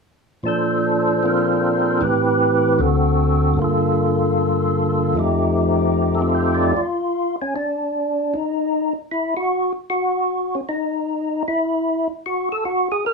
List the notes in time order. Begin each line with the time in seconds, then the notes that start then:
0.43 A#2 F3 D4 A4
0.48 C5
1.23 F3 C4 F4 A#4
2.01 A2 E3 C4 G4 B4
2.79 D2 D3 C4 F#4 A4
3.54 G2 D3
3.59 A#3 F4
3.64 A4
5.14 F2 F3 A3 D#4
5.19 G4
6.15 A4
6.19 A3 C4 F4 A4
6.35 C5
6.55 D5
6.76 F4
7.42 C#4
7.56 D4
8.34 D#4
9.11 E4
9.37 F#4
9.90 F#4
10.55 C#4
10.69 D#4
11.48 E4
12.26 F#4
12.52 A4
12.65 F#4
12.92 G#4
13.06 A#4